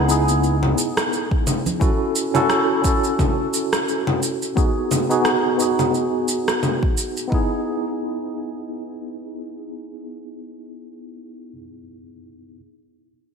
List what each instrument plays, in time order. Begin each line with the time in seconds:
Already playing: fretless electric bass C#2, tine electric piano B3 D#4 E4 G#4
0.07 tine electric piano B3 D#4 E4, shaker
0.11 tine electric piano G#4
0.28 high conga, shaker
0.43 shaker
0.63 low conga
0.78 shaker
0.97 cross-stick, shaker
1.13 shaker
1.31 kick
1.47 low conga, shaker
1.66 low conga, shaker
1.80 tine electric piano C#4 E4 F#4 A4, kick, shaker
2.16 shaker
2.34 tine electric piano C#4 E4 F#4 A4, low conga, shaker
2.50 cross-stick, shaker
2.82 tine electric piano C#4 E4 F#4, kick, shaker
2.86 tine electric piano A4
3.04 shaker
3.19 kick, low conga, shaker
3.54 shaker
3.73 cross-stick, shaker
3.88 shaker
4.07 low conga
4.23 shaker
4.42 shaker
4.56 tine electric piano B3 D#4 F#4 G#4, kick, shaker
4.91 low conga, shaker
5.09 tine electric piano B3 D#4 F#4 G#4, shaker
5.25 cross-stick, shaker
5.58 tine electric piano B3 D#4 F#4, shaker
5.62 tine electric piano G#4
5.79 low conga, shaker
5.94 shaker
6.28 shaker
6.48 cross-stick, shaker
6.63 low conga, shaker
6.83 kick
6.97 shaker
7.17 shaker
7.28 tine electric piano B3 D#4
7.32 tine electric piano E4 G#4, kick